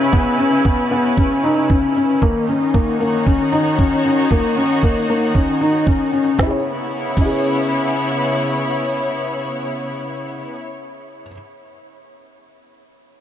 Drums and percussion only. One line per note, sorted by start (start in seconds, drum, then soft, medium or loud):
0.13 kick medium
0.13 shaker soft
0.40 shaker medium
0.65 kick medium
0.65 shaker soft
0.92 shaker medium
1.17 kick medium
1.17 shaker soft
1.45 shaker soft
1.70 kick medium
1.70 shaker soft
1.83 shaker soft
1.96 shaker medium
2.22 kick medium
2.22 shaker soft
2.49 shaker medium
2.74 kick medium
2.74 shaker soft
3.01 shaker soft
3.27 kick medium
3.27 shaker soft
3.53 shaker soft
3.79 kick medium
3.79 shaker soft
3.93 shaker soft
4.05 shaker medium
4.31 kick medium
4.31 shaker soft
4.58 shaker medium
4.83 kick medium
4.83 shaker soft
5.09 shaker soft
5.35 kick medium
5.35 shaker soft
5.61 shaker soft
5.87 kick medium
5.87 shaker soft
6.01 shaker soft
6.14 shaker medium
6.39 kick medium
6.39 snare medium
7.17 kick medium
7.17 crash medium